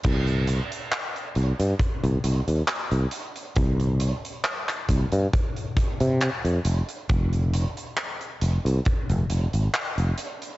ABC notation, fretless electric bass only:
X:1
M:4/4
L:1/16
Q:"Swing 16ths" 1/4=68
K:Fm
V:1 name="Fretless electric bass" clef=bass
C,,2 z4 C,, G,, z C,, C,, E,, z C,, z2 | C,,2 z4 C,, G,, z3 C, z F,, F,,, z | F,,,2 z4 F,,, C,, z F,,, F,,, A,,, z F,,, z2 |]